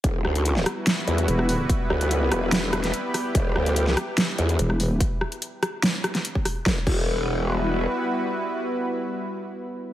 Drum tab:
CC |----------------|----------------|----------------|----------------|
HH |x--xx-x-x-xxx-o-|x--xx-x-x-xxx-o-|x--xx-x-x-xxx-o-|x--xx-x-x-xxx-o-|
SD |--r--or-o----r--|--r---r-o-ro--r-|--r--or-o----r--|--r---r-o-ro--r-|
BD |o---------------|o---------------|o---------------|o------------o--|

CC |--x-------------|----------------|
HH |----------------|----------------|
SD |o---------------|----------------|
BD |o-o-------------|----------------|